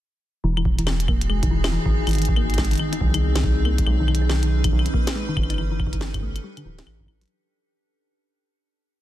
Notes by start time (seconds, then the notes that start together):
0.44 E1 E3 B3 D#4 F#4 G#4
0.57 E3, claves
0.65 kick
0.79 E3, closed hi-hat
0.87 E3, snare, claves
1.00 closed hi-hat
1.08 A#3, kick, claves
1.21 closed hi-hat
1.29 G#3, claves
1.43 D#3, kick, closed hi-hat
1.51 E3
1.64 E4, snare, claves
1.72 E3
1.86 G#1 E3, kick
2.07 G#1 E3, closed hi-hat, claves
2.09 closed hi-hat
2.11 closed hi-hat
2.13 D#3, closed hi-hat
2.15 C4, closed hi-hat
2.18 closed hi-hat
2.22 closed hi-hat
2.25 kick, closed hi-hat
2.36 A#3, claves
2.50 closed hi-hat
2.54 closed hi-hat
2.58 G#3, kick, snare, closed hi-hat, claves
2.65 closed hi-hat
2.71 D#3, closed hi-hat
2.73 closed hi-hat
2.75 closed hi-hat
2.78 D#3, closed hi-hat, claves
2.93 D#4, closed hi-hat
3.01 C2 D#3, kick
3.14 D#3, closed hi-hat, claves
3.36 D#3, snare, closed hi-hat, claves
3.44 D#3, kick
3.65 A#3, claves
3.78 kick, closed hi-hat
3.87 B1 G#3 C#4 B4, claves
4.00 D#3
4.08 D#3, claves
4.15 closed hi-hat
4.22 D#4
4.30 D#3, snare, claves
4.43 D#3, closed hi-hat
4.64 D#3, kick, closed hi-hat, claves
4.72 B1 D#3
4.79 claves
4.86 closed hi-hat
4.94 A#3, kick
5.07 snare, closed hi-hat, claves
5.15 G#3
5.29 D#3
5.37 G1 D#3, kick, claves
5.43 claves
5.50 D#4, closed hi-hat, claves
5.54 E3 G4 A4, claves
5.58 D4, claves
5.71 E3
5.80 kick, claves
5.87 kick
5.93 E3, kick, closed hi-hat
6.01 E3, snare
6.14 kick, closed hi-hat, claves
6.16 kick
6.18 kick
6.20 A3, kick
6.22 kick
6.26 kick
6.29 kick
6.32 kick, closed hi-hat, claves
6.44 G3
6.57 D3, closed hi-hat, claves
6.65 D1 E3
6.78 E4, snare, closed hi-hat
6.87 A1 E3, claves
7.00 E3, kick
7.02 kick
7.04 kick
7.06 E3, kick, claves
7.21 F#3, closed hi-hat
7.23 closed hi-hat
7.26 closed hi-hat